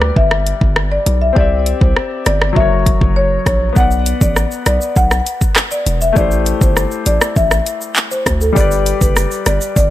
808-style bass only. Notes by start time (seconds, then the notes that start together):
Already playing: D2
0.16 G1
0.61 G1
1.06 B1
1.36 C2
1.81 C2
2.26 G1
2.56 F#1
3.01 F#1
3.46 A#1
3.76 B1
4.21 A1
4.66 B1
4.96 B1
5.86 E1
6.16 A1
6.61 G1
7.06 A1
7.36 A1
8.26 D2
8.56 G1
9.01 F#1
9.46 G1
9.76 G1